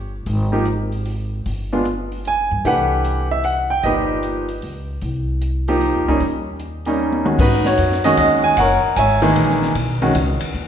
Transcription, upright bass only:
Already playing: G1
0.26 G#1
1.46 G1
2.51 G2
2.65 C2
3.84 G1
4.63 C#2
5.02 C2
5.95 D#2
6.08 D2
6.20 D#2
7.39 G#2
7.78 F#2
8.18 D#2
8.57 F#1
8.84 muted upright bass stroke
8.97 G#1
9.36 A#1
9.75 B1
10.15 C#2
10.41 muted upright bass stroke
10.55 D#2

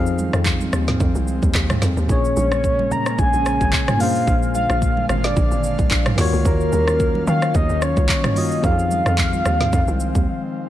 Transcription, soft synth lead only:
2.10 C#5
2.91 A#5
3.19 G#5
4.00 F5
4.55 F5
5.09 F5
5.24 D5
6.46 A#4
7.28 F5
7.56 D#5
7.83 C#5
8.10 C#5
8.37 D#5
8.65 F5

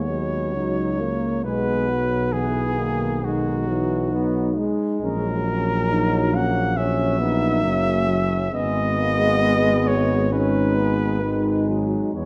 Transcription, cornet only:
Already playing: C#5
1.45 B4
2.33 G#4
3.25 F#4
5.05 A#4
6.35 F#5
6.77 E5
8.55 D#5
9.87 C#5
10.33 B4
12.16 C#5

